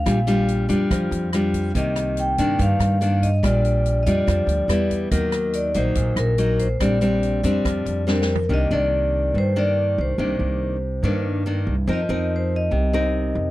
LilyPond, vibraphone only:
\new Staff \with { instrumentName = "Vibraphone" } { \time 4/4 \key c \dorian \tempo 4 = 142 f''4 r2. | ees''4 g''4 f''4. ees''8 | d''4~ \tuplet 3/2 { d''8 ees''16 d''8.~ } d''4. r8 | bes'4 d''8 c''4 bes'4 c''8 |
d''2. bes'4 | ees''8 d''4. c''8 d''4 c''8~ | c''2~ c''8 r4. | ees''4 c''8 ees''2~ ees''8 | }